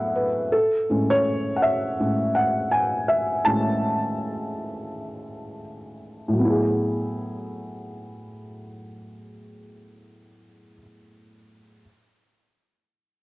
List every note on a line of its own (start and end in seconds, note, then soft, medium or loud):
0.00 0.24 A2 medium
0.00 0.25 F#3 medium
0.00 0.25 B3 medium
0.00 0.26 E4 medium
0.00 0.27 G#4 medium
0.00 0.54 E5 medium
0.00 0.55 F#5 medium
0.00 0.54 G#5 medium
0.16 0.53 B4 medium
0.52 1.06 A4 medium
0.90 1.98 A2 soft
0.90 1.98 G#3 soft
0.90 1.98 C#4 medium
1.10 1.58 C#5 loud
1.56 1.62 F#5 medium
1.62 2.38 E5 medium
1.99 2.32 A2 soft
1.99 2.32 G#3 soft
1.99 2.32 C#4 soft
2.35 2.73 F#5 medium
2.71 3.09 G#5 medium
3.08 3.46 E5 medium
3.45 3.96 A2 medium
3.45 3.97 G#3 medium
3.45 3.97 C#4 medium
3.45 5.61 A5 loud
6.28 10.72 A2 medium
6.33 10.74 F#3 medium
6.39 10.77 B3 medium
6.45 10.80 E4 medium
6.50 10.83 G#4 medium